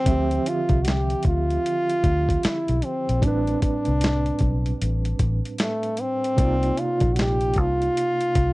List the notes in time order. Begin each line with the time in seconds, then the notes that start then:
Already playing: C4
0.04 D2 D3 C4 E5, kick, closed hi-hat
0.10 F3 G4
0.31 closed hi-hat
0.46 F4, closed hi-hat
0.69 C2, kick, closed hi-hat
0.83 F#4, closed hi-hat
0.88 G4, snare
1.10 closed hi-hat
1.23 D2, kick, closed hi-hat
1.27 F4
1.51 closed hi-hat
1.66 closed hi-hat
1.90 closed hi-hat
2.04 D2, kick, closed hi-hat
2.29 kick, closed hi-hat
2.43 E4, muted fingered electric bass stroke, snare, closed hi-hat
2.68 B1, closed hi-hat
2.82 C4, closed hi-hat
3.09 A#1, closed hi-hat
3.20 A1 A2 G3 C4, kick, closed hi-hat
3.24 D4 B4
3.47 closed hi-hat
3.62 D4, kick, closed hi-hat
3.85 C2, closed hi-hat
4.01 snare, closed hi-hat
4.26 closed hi-hat
4.39 B1, kick, closed hi-hat
4.66 closed hi-hat
4.82 A1, closed hi-hat
5.05 closed hi-hat
5.19 A1, kick, closed hi-hat
5.45 closed hi-hat
5.58 A3, snare, closed hi-hat
5.83 closed hi-hat
5.97 closed hi-hat
6.01 C4
6.24 closed hi-hat
6.36 C2 C3 A#3 D5, kick, closed hi-hat
6.42 D#4 F4
6.63 closed hi-hat
6.77 F4, closed hi-hat
7.00 A#1, kick, closed hi-hat
7.14 F#4, closed hi-hat
7.19 G4, snare
7.41 closed hi-hat
7.54 C2, kick, closed hi-hat
7.59 F4
7.82 closed hi-hat
7.97 closed hi-hat
8.21 closed hi-hat
8.35 C2, kick, closed hi-hat